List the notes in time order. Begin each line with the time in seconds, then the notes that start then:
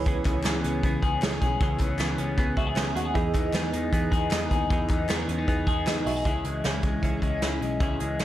Already playing: C#2 E4 B4 C#5 B5
0.06 C#3 E3 B3 C#4 G#4, kick, closed hi-hat
0.25 C#2 B3 C#4 G#4, kick, clap, closed hi-hat
0.43 C#2 E3 B3 C#4 G#4, snare, clap, closed hi-hat
0.64 C#2 B3 C#4 G#4, closed hi-hat
0.83 C#2 C#3 E3 B3 C#4 G#4, kick, closed hi-hat
1.03 C#2 B3 C#4 G#4, kick, closed hi-hat
1.22 C#2 E3 B3 C#4 G#4, snare, clap, closed hi-hat
1.42 B1 B3 C#4 G#4, kick, closed hi-hat
1.61 C#2 C#3 E3 B3 C#4 G#4, kick, closed hi-hat
1.79 C#2 C#4 G#4, kick, clap, closed hi-hat
1.84 B3
1.99 C#2 E3 B3 C#4 G#4, snare, clap, closed hi-hat
2.18 C#2 B3 C#4 G#4, closed hi-hat
2.38 C#2 C#3 E3 B3 C#4 G#4, kick, closed hi-hat
2.57 C#2 B3 C#4 F#4 G#4 E5, kick, closed hi-hat
2.67 G#4
2.76 C#2 E3 B3 C#4 G#4 G#5, snare, clap, closed hi-hat
2.95 D#2 B3 C#4 F#4 G#4 F#5, closed hi-hat
3.05 G#4
3.14 E2 E3 B3 D#4 E4 G#4 D#5, kick, closed hi-hat
3.34 E2 B3 D#4 G#4, kick, clap, closed hi-hat
3.53 E2 E3 B3 D#4 G#4, snare, clap, closed hi-hat
3.73 E2 B3 D#4 G#4, closed hi-hat
3.93 E2 E3 B3 D#4 G#4, kick, closed hi-hat
4.12 E2 B3 D#4 G#4, kick, closed hi-hat
4.30 E2 E3 B3 D#4, snare, clap, closed hi-hat
4.35 G#4
4.51 D#2 B3 D#4 G#4, kick, closed hi-hat
4.70 E2 E3 B3 D#4 G#4, kick, closed hi-hat
4.89 E2 B3 D#4 G#4, kick, clap, closed hi-hat
5.08 E2 E3 B3 D#4 G#4, snare, clap, closed hi-hat
5.28 E2 B3 C#4 D#4 G#4, closed hi-hat
5.38 D#4
5.48 E2 E3 B3 D#4 G#4, kick, closed hi-hat
5.67 E2 B3 D#4 G#4 G#5, kick, closed hi-hat
5.86 E2 E3 B3 D#4 G#4 D#5, snare, clap, closed hi-hat
6.06 B1 B3 D#4 F#4 G#4 E5, open hi-hat
6.16 G#4
6.25 C#2 C#3 E3 C#4 E4 G#4, kick, closed hi-hat
6.44 C#2 G#3 C#4 E4 G#4, closed hi-hat
6.64 C#2 C#3 E3 C#4 E4 G#4, snare, closed hi-hat
6.83 C#2 G#3 C#4 E4 G#4, kick, closed hi-hat
7.02 C#2 E3 C#4 E4 G#4, kick, closed hi-hat
7.22 C#2 G#3 C#4 E4 G#4, kick, closed hi-hat
7.42 C#2 C#3 E3 C#4 E4 G#4, snare, closed hi-hat
7.61 B1 G#3 C#4 E4 G#4, closed hi-hat
7.80 C#2 C#3 E3 C#4 E4 G#4, kick, closed hi-hat
8.00 C#2 G#3 C#4 E4 G#4, closed hi-hat
8.19 C#2 C#3 E3 C#4, snare, closed hi-hat